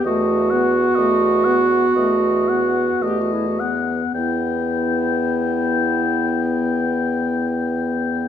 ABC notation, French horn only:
X:1
M:4/4
L:1/8
Q:1/4=58
K:Em
V:1 name="French horn"
A, B, A, B, A, B, A, B, | B,8 |]